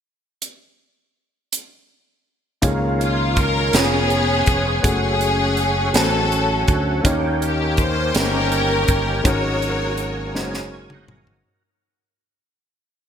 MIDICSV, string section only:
0, 0, Header, 1, 2, 480
1, 0, Start_track
1, 0, Key_signature, -5, "major"
1, 0, Tempo, 735294
1, 279, Time_signature, 6, 3, 24, 8
1, 8539, End_track
2, 0, Start_track
2, 0, Title_t, "String section"
2, 0, Program_c, 0, 48
2, 1970, Note_on_c, 0, 65, 70
2, 2188, Note_off_c, 0, 65, 0
2, 2210, Note_on_c, 0, 70, 81
2, 2436, Note_on_c, 0, 59, 60
2, 2436, Note_on_c, 0, 61, 60
2, 2439, Note_on_c, 0, 68, 84
2, 2444, Note_off_c, 0, 70, 0
2, 3131, Note_off_c, 0, 59, 0
2, 3131, Note_off_c, 0, 61, 0
2, 3156, Note_off_c, 0, 68, 0
2, 3160, Note_on_c, 0, 61, 52
2, 3163, Note_on_c, 0, 68, 79
2, 3852, Note_off_c, 0, 61, 0
2, 3854, Note_off_c, 0, 68, 0
2, 3883, Note_on_c, 0, 69, 71
2, 3892, Note_on_c, 0, 61, 49
2, 4420, Note_off_c, 0, 69, 0
2, 4578, Note_off_c, 0, 61, 0
2, 4856, Note_on_c, 0, 67, 64
2, 5070, Note_off_c, 0, 67, 0
2, 5092, Note_on_c, 0, 72, 74
2, 5324, Note_off_c, 0, 72, 0
2, 5331, Note_on_c, 0, 61, 58
2, 5331, Note_on_c, 0, 67, 59
2, 5331, Note_on_c, 0, 70, 85
2, 6017, Note_off_c, 0, 61, 0
2, 6017, Note_off_c, 0, 67, 0
2, 6043, Note_off_c, 0, 70, 0
2, 6049, Note_on_c, 0, 73, 78
2, 6050, Note_on_c, 0, 70, 64
2, 6051, Note_on_c, 0, 66, 62
2, 6737, Note_off_c, 0, 70, 0
2, 6738, Note_off_c, 0, 66, 0
2, 6763, Note_off_c, 0, 73, 0
2, 8539, End_track
0, 0, End_of_file